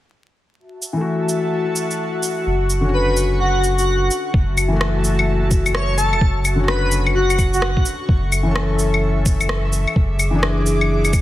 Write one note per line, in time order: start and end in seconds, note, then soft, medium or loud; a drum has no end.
0.59 4.30 F#4 medium
0.59 4.35 F#4 medium
0.59 2.45 E5 medium
0.59 4.35 F#5 medium
0.59 2.44 A5 medium
0.82 shaker medium
0.93 2.43 E3 medium
0.93 2.45 A3 medium
1.01 2.47 F#4 medium
1.29 shaker medium
1.76 shaker medium
1.91 shaker soft
2.23 shaker medium
2.46 4.09 F#1 medium
2.46 4.32 C#6 medium
2.70 shaker medium
2.81 4.31 D3 medium
2.85 4.33 C#4 medium
2.89 4.35 F#4 loud
2.94 3.18 B4 medium
3.17 shaker medium
3.40 3.65 F#4 medium
3.64 shaker medium
3.78 4.10 F#4 medium
3.78 shaker soft
4.11 shaker medium
4.33 6.14 F#1 medium
4.33 6.19 F#4 medium
4.33 6.19 E5 medium
4.33 6.19 A5 medium
4.33 kick loud
4.58 claves medium
4.58 shaker medium
4.68 6.18 E3 medium
4.72 6.20 A3 medium
4.72 6.22 F#4 loud
4.81 cross-stick loud
5.04 shaker medium
5.19 claves medium
5.51 kick loud
5.51 shaker medium
5.66 claves medium
5.66 shaker soft
5.74 5.96 C#5 medium
5.74 cross-stick loud
5.98 6.23 A4 medium
5.98 shaker medium
6.13 6.21 E1 medium
6.13 claves medium
6.21 7.84 F#1 medium
6.21 8.07 F#4 medium
6.21 9.92 C#6 medium
6.21 kick loud
6.45 claves medium
6.45 shaker medium
6.56 8.06 D3 medium
6.60 8.08 C#4 medium
6.60 8.10 F#4 loud
6.68 6.93 B4 medium
6.68 cross-stick loud
6.92 shaker medium
7.07 claves medium
7.15 7.40 F#4 medium
7.30 claves medium
7.30 shaker soft
7.38 kick loud
7.38 claves soft
7.38 shaker medium
7.53 7.85 F#4 medium
7.53 shaker soft
7.62 cross-stick loud
7.77 kick loud
7.85 shaker medium
8.09 9.39 F#1 loud
8.09 9.95 A4 medium
8.09 11.21 E5 medium
8.09 kick loud
8.32 claves medium
8.32 shaker medium
8.43 9.93 E3 medium
8.43 9.95 C#4 medium
8.51 9.97 A4 loud
8.56 cross-stick loud
8.79 shaker medium
8.94 claves medium
9.26 kick loud
9.26 shaker medium
9.41 9.86 F#1 medium
9.41 claves soft
9.41 shaker soft
9.49 cross-stick loud
9.73 shaker medium
9.88 claves soft
9.96 11.21 F#1 medium
9.96 11.21 G#4 medium
9.96 11.21 D6 medium
9.96 kick loud
10.19 claves medium
10.19 shaker medium
10.31 11.21 E3 medium
10.31 11.21 D4 medium
10.39 11.21 G#4 loud
10.43 cross-stick loud
10.66 shaker medium
10.81 claves medium
11.05 claves soft
11.05 shaker soft
11.13 kick loud
11.13 claves soft
11.13 shaker medium